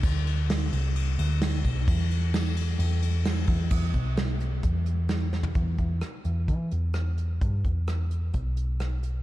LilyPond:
<<
  \new Staff \with { instrumentName = "Picked electric bass" } { \clef bass \time 4/4 \key e \minor \tempo 4 = 130 d,4. c,4 d,4 b,,8 | e,2 e,4. e,8 | e,8 b,,4. e,2 | e,8 e,8 r8 e,8 e8 e,4. |
g,8 e,4. b,,2 | }
  \new DrumStaff \with { instrumentName = "Drums" } \drummode { \time 4/4 <cymc bd>8 cymr8 <cymr sn>8 cymr8 cymr8 cymr8 <cymr sn>8 <bd cymr>8 | <bd cymr>8 cymr8 <cymr sn>8 cymr8 cymr8 cymr8 <cymr sn>8 <bd cymr>8 | <cymc bd>8 <hh bd>8 <hh sn>8 hh8 <hh bd>8 hh8 <hh sn>8 sn16 tomfh16 | <hh bd>8 <hh bd>8 <hh ss>8 hh8 <hh bd>8 hh8 <hh ss>8 hh8 |
<hh bd>8 <hh bd>8 <hh ss>8 hh8 <hh bd>8 hh8 <hh ss>8 hh8 | }
>>